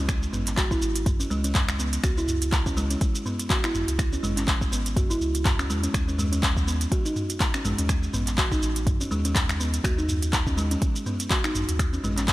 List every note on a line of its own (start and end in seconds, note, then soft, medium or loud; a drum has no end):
0.00 0.28 C#2 loud
0.09 finger snap medium
0.09 kick loud
0.09 closed hi-hat soft
0.09 shaker loud
0.23 shaker medium
0.33 0.77 G#1 loud
0.33 0.40 B3 medium
0.33 mid tom medium
0.33 shaker loud
0.47 clap soft
0.47 closed hi-hat medium
0.47 shaker medium
0.57 0.70 F#4 medium
0.57 kick loud
0.57 clap loud
0.57 closed hi-hat soft
0.57 shaker medium
0.71 0.81 E4 medium
0.71 kick medium
0.71 shaker medium
0.82 1.25 G#1 loud
0.82 shaker loud
0.96 closed hi-hat medium
0.96 shaker medium
1.06 kick loud
1.06 closed hi-hat soft
1.06 mid tom medium
1.06 shaker medium
1.20 1.30 C#4 medium
1.20 shaker medium
1.30 1.99 C#2 medium
1.30 1.43 G#3 loud
1.30 shaker medium
1.44 1.54 C#4 medium
1.44 closed hi-hat medium
1.44 shaker medium
1.55 kick loud
1.55 clap loud
1.55 closed hi-hat soft
1.55 mid tom medium
1.55 shaker loud
1.69 finger snap loud
1.69 shaker medium
1.79 1.87 B3 medium
1.79 shaker loud
1.93 closed hi-hat medium
1.93 shaker medium
2.04 2.96 C#2 loud
2.04 2.16 F#4 medium
2.04 finger snap medium
2.04 kick loud
2.04 closed hi-hat soft
2.04 shaker loud
2.17 2.27 E4 medium
2.17 shaker medium
2.28 mid tom medium
2.28 shaker loud
2.42 closed hi-hat medium
2.42 shaker medium
2.52 kick loud
2.52 clap loud
2.52 closed hi-hat soft
2.52 shaker medium
2.66 2.76 C#4 medium
2.66 kick medium
2.66 shaker medium
2.77 2.89 G#3 loud
2.77 shaker loud
2.90 3.00 C#4 medium
2.90 closed hi-hat medium
2.90 shaker medium
3.01 kick loud
3.01 closed hi-hat soft
3.01 shaker medium
3.15 shaker loud
3.26 3.33 B3 medium
3.26 mid tom medium
3.26 shaker medium
3.39 closed hi-hat medium
3.39 shaker medium
3.50 3.62 F#4 medium
3.50 kick loud
3.50 clap loud
3.50 closed hi-hat soft
3.50 shaker loud
3.64 3.74 E4 medium
3.64 finger snap loud
3.64 shaker medium
3.75 3.84 G#1 medium
3.75 mid tom medium
3.75 shaker loud
3.88 4.18 C#2 loud
3.88 closed hi-hat medium
3.88 shaker medium
3.99 finger snap medium
3.99 kick loud
3.99 closed hi-hat soft
3.99 shaker medium
4.13 4.23 C#4 medium
4.13 shaker medium
4.23 4.67 G#1 loud
4.23 4.36 G#3 loud
4.23 mid tom medium
4.23 shaker loud
4.37 4.47 C#4 medium
4.37 clap soft
4.37 closed hi-hat medium
4.37 shaker medium
4.48 kick loud
4.48 clap loud
4.48 closed hi-hat soft
4.48 shaker medium
4.61 kick medium
4.61 shaker medium
4.72 5.16 G#1 loud
4.72 4.79 B3 medium
4.72 shaker loud
4.86 closed hi-hat medium
4.86 shaker medium
4.96 5.09 F#4 medium
4.96 kick loud
4.96 closed hi-hat soft
4.96 mid tom medium
4.96 shaker medium
5.10 5.20 E4 medium
5.10 shaker loud
5.21 5.71 C#2 medium
5.21 shaker medium
5.35 closed hi-hat medium
5.35 shaker medium
5.45 kick loud
5.45 clap loud
5.45 closed hi-hat soft
5.45 mid tom medium
5.45 shaker loud
5.59 5.69 C#4 medium
5.59 finger snap medium
5.59 shaker medium
5.70 5.88 E2 medium
5.70 5.82 G#3 loud
5.70 shaker loud
5.83 5.93 C#4 medium
5.83 closed hi-hat medium
5.83 shaker medium
5.94 6.87 D#2 loud
5.94 finger snap medium
5.94 kick loud
5.94 closed hi-hat soft
5.94 shaker medium
6.08 6.18 C#4 medium
6.08 shaker medium
6.18 6.31 G#3 loud
6.18 mid tom medium
6.18 shaker medium
6.32 6.42 C#4 medium
6.32 closed hi-hat medium
6.32 shaker medium
6.43 kick loud
6.43 clap loud
6.43 closed hi-hat soft
6.43 shaker medium
6.57 kick medium
6.57 shaker medium
6.67 6.75 B3 medium
6.67 shaker medium
6.81 closed hi-hat medium
6.81 shaker medium
6.92 7.04 F#4 medium
6.92 kick loud
6.92 closed hi-hat soft
6.92 shaker medium
7.05 7.15 D#4 medium
7.05 shaker medium
7.16 mid tom loud
7.16 shaker medium
7.30 closed hi-hat medium
7.30 shaker medium
7.40 kick loud
7.40 clap loud
7.40 closed hi-hat soft
7.40 shaker medium
7.54 7.64 C#4 medium
7.54 finger snap medium
7.54 shaker medium
7.65 7.74 A1 medium
7.65 7.77 G#3 loud
7.65 mid tom medium
7.65 shaker loud
7.78 8.08 D#2 loud
7.78 7.88 C#4 medium
7.78 closed hi-hat medium
7.78 shaker medium
7.89 finger snap medium
7.89 kick loud
7.89 closed hi-hat soft
7.89 shaker medium
8.03 shaker medium
8.13 8.57 A1 loud
8.13 8.21 B3 medium
8.13 mid tom medium
8.13 shaker medium
8.27 clap soft
8.27 closed hi-hat medium
8.27 shaker medium
8.38 8.50 F#4 medium
8.38 kick loud
8.38 clap loud
8.38 closed hi-hat soft
8.38 shaker medium
8.52 8.61 D#4 medium
8.52 kick medium
8.52 shaker medium
8.62 9.06 A1 loud
8.62 shaker medium
8.76 closed hi-hat medium
8.76 shaker medium
8.87 kick loud
8.87 closed hi-hat soft
8.87 mid tom medium
8.87 shaker medium
9.00 9.11 C#4 medium
9.00 shaker medium
9.11 9.79 D#2 medium
9.11 9.23 G#3 loud
9.11 shaker medium
9.25 9.34 C#4 medium
9.25 closed hi-hat medium
9.25 shaker medium
9.35 kick loud
9.35 clap loud
9.35 closed hi-hat soft
9.35 mid tom medium
9.35 shaker medium
9.49 finger snap medium
9.49 shaker medium
9.60 9.67 B3 medium
9.60 shaker medium
9.74 closed hi-hat medium
9.74 shaker medium
9.84 10.77 D#2 loud
9.84 9.97 F#4 medium
9.84 finger snap medium
9.84 kick loud
9.84 closed hi-hat soft
9.84 shaker medium
9.98 10.08 D#4 medium
9.98 shaker medium
10.09 mid tom medium
10.09 shaker medium
10.22 closed hi-hat medium
10.22 shaker medium
10.33 kick loud
10.33 clap loud
10.33 closed hi-hat soft
10.33 shaker medium
10.47 10.57 C#4 medium
10.47 kick medium
10.47 shaker medium
10.57 10.70 G#3 loud
10.57 shaker medium
10.71 10.81 C#4 medium
10.71 closed hi-hat medium
10.71 shaker soft
10.82 kick loud
10.82 closed hi-hat soft
10.82 shaker medium
10.96 shaker medium
11.06 11.14 B3 medium
11.06 mid tom medium
11.06 shaker medium
11.20 closed hi-hat medium
11.20 shaker medium
11.31 11.43 F#4 medium
11.31 kick loud
11.31 clap loud
11.31 closed hi-hat soft
11.31 shaker medium
11.44 11.54 D#4 medium
11.44 finger snap medium
11.44 shaker medium
11.55 11.65 A1 medium
11.55 mid tom medium
11.55 shaker loud
11.68 11.99 D#2 loud
11.68 closed hi-hat medium
11.68 shaker soft
11.79 finger snap medium
11.79 kick loud
11.79 closed hi-hat soft
11.79 shaker medium
11.93 12.03 C#4 medium
11.93 shaker medium
12.04 12.33 A1 loud
12.04 12.16 G#3 loud
12.04 mid tom medium
12.04 shaker medium
12.17 12.27 C#4 medium
12.17 clap soft
12.17 closed hi-hat medium
12.17 shaker medium
12.28 kick loud
12.28 clap loud
12.28 closed hi-hat soft
12.28 shaker medium